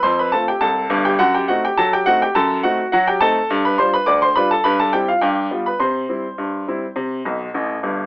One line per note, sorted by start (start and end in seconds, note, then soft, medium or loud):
0.03 0.29 F2 medium
0.03 0.18 C5 medium
0.03 0.18 C6 loud
0.19 0.33 B4 medium
0.19 0.34 B5 medium
0.32 0.49 A3 soft
0.32 0.49 C4 soft
0.32 0.49 F4 soft
0.32 0.47 A4 medium
0.32 0.47 A5 medium
0.48 0.62 G4 medium
0.48 0.62 G5 medium
0.61 0.86 C2 medium
0.61 1.02 A4 medium
0.61 0.96 A5 medium
0.90 1.13 G1 medium
0.90 1.13 G2 medium
1.05 1.19 G4 medium
1.05 1.20 G5 medium
1.19 1.44 F#2 medium
1.19 1.33 F#4 medium
1.19 1.34 F#5 loud
1.35 1.49 G4 medium
1.35 1.49 G5 medium
1.48 1.65 A3 medium
1.48 1.65 C4 soft
1.48 1.65 D#4 medium
1.48 1.62 F#4 medium
1.48 1.63 F#5 medium
1.65 1.78 G4 medium
1.65 1.78 G5 medium
1.78 2.02 F#3 medium
1.78 1.92 A4 medium
1.78 1.92 A5 loud
1.93 2.07 G4 medium
1.93 2.07 G5 medium
2.06 2.22 A3 medium
2.06 2.23 C4 medium
2.06 2.23 D#4 medium
2.06 2.20 F#4 medium
2.06 2.20 F#5 loud
2.22 2.35 G4 medium
2.22 2.36 G5 medium
2.35 2.60 F#2 medium
2.35 2.62 A4 medium
2.35 2.58 A5 medium
2.63 2.79 A3 medium
2.63 2.80 C4 soft
2.63 2.80 D#4 soft
2.63 2.91 F#4 medium
2.63 2.86 F#5 medium
2.92 3.17 F#3 medium
2.92 3.06 F#4 medium
2.92 3.07 F#5 medium
3.08 3.21 G4 medium
3.08 3.21 G5 medium
3.21 3.37 A3 medium
3.21 3.37 C4 medium
3.21 3.37 D#4 medium
3.21 3.61 A4 medium
3.21 3.55 A5 loud
3.50 3.74 G2 medium
3.65 3.79 B4 medium
3.65 3.79 B5 medium
3.78 3.95 G3 medium
3.78 3.95 D4 soft
3.78 3.95 F4 soft
3.78 3.92 C5 medium
3.78 3.93 C6 medium
3.94 4.07 B4 medium
3.94 4.08 B5 medium
4.06 4.31 D2 medium
4.06 4.21 D5 medium
4.06 4.21 D6 medium
4.22 4.36 C5 medium
4.22 4.36 C6 medium
4.36 4.52 G3 medium
4.36 4.52 D4 medium
4.36 4.52 F4 medium
4.36 4.50 B4 medium
4.36 4.50 B5 medium
4.51 4.65 A4 medium
4.51 4.65 A5 medium
4.64 4.89 G2 medium
4.64 4.78 B4 medium
4.64 4.79 B5 medium
4.80 4.93 A4 medium
4.80 4.94 A5 medium
4.93 5.09 G3 medium
4.93 5.09 C4 soft
4.93 5.10 E4 medium
4.93 5.07 G4 medium
4.93 5.08 G5 medium
5.08 5.22 F4 medium
5.08 5.22 F5 medium
5.21 5.47 G2 medium
5.21 5.63 G4 medium
5.21 5.56 G5 medium
5.51 5.67 G3 soft
5.51 5.67 B3 medium
5.51 5.67 F4 medium
5.66 5.80 B4 medium
5.66 5.80 B5 medium
5.80 6.05 C3 medium
5.80 7.80 C5 medium
5.80 7.79 C6 medium
6.09 6.25 G3 soft
6.09 6.25 C4 soft
6.09 6.25 E4 soft
6.38 6.63 G2 medium
6.68 6.83 G3 soft
6.68 6.84 C4 soft
6.68 6.84 E4 medium
6.96 7.21 C3 medium
7.25 7.47 B1 medium
7.25 7.47 B2 medium
7.54 7.76 A1 medium
7.54 7.76 A2 medium
7.83 8.05 G1 medium
7.83 8.05 G2 medium